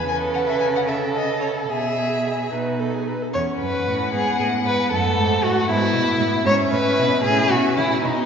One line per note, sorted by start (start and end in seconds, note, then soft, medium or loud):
0.08 1.66 C#3 medium
0.08 0.84 A4 medium
0.08 0.90 B4 medium
0.08 0.16 G#5 medium
0.34 0.40 F#5 medium
0.48 0.60 E5 medium
0.60 0.66 G#5 medium
0.76 0.81 F#5 medium
0.88 1.71 A4 soft
0.88 1.72 A4 medium
0.88 0.96 E5 medium
1.15 1.41 D#5 medium
1.41 1.49 C#5 medium
1.69 2.51 B2 soft
1.69 2.53 G#4 soft
1.69 2.47 G#4 soft
1.69 2.50 E5 medium
2.52 3.13 B2 soft
2.52 3.14 D#4 soft
2.52 2.81 B4 soft
2.80 2.96 A4 soft
2.94 3.10 G#4 soft
3.08 3.24 B4 medium
3.23 3.35 A4 soft
3.34 3.43 E2 medium
3.34 4.15 C#4 soft
3.34 3.42 C#5 medium
3.34 5.71 F#5 medium
3.61 3.70 F#2 medium
3.61 4.12 B4 medium
3.87 4.13 A2 soft
4.13 4.21 G#2 medium
4.13 4.92 B3 medium
4.13 4.39 G#4 medium
4.39 4.65 A2 medium
4.39 4.47 G#4 medium
4.65 4.73 G#2 medium
4.65 4.91 B4 medium
4.91 5.16 F#2 medium
4.91 5.70 A3 medium
4.91 5.45 A4 medium
5.17 5.42 G#2 medium
5.42 5.50 A2 medium
5.42 5.69 F#4 medium
5.69 5.93 G#2 medium
5.69 6.45 B3 medium
5.69 6.45 E4 medium
5.69 6.46 E5 medium
5.94 6.02 B2 medium
6.20 6.28 A2 medium
6.45 6.54 G#2 medium
6.45 7.22 C#4 medium
6.45 6.54 C#5 loud
6.45 7.22 E5 medium
6.72 6.80 A2 medium
6.72 7.23 B4 medium
6.98 7.23 B2 medium
7.23 7.50 A2 medium
7.23 8.03 C#4 medium
7.23 7.52 G#4 loud
7.23 8.05 E5 medium
7.50 7.59 B2 medium
7.50 7.76 F#4 medium
7.76 7.85 C#3 medium
7.76 8.02 E4 medium
8.03 8.13 B2 medium
8.03 8.26 B3 medium
8.03 8.26 D#4 medium
8.03 8.26 D#5 medium